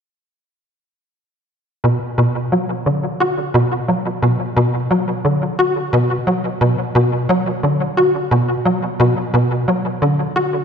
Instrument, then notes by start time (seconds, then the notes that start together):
analog synth bass
1.84 B2
2.18 B2
2.52 F#3
2.86 D3
3.20 F#4
3.54 B2
3.88 F#3
4.22 B2
4.56 B2
4.91 F#3
5.25 D3
5.59 F#4
5.93 B2
6.27 F#3
6.61 B2
6.95 B2
7.29 F#3
7.63 D3
7.97 F#4
8.31 B2
8.65 F#3
9.00 B2
9.34 B2
9.68 F#3
10.02 D3
10.36 F#4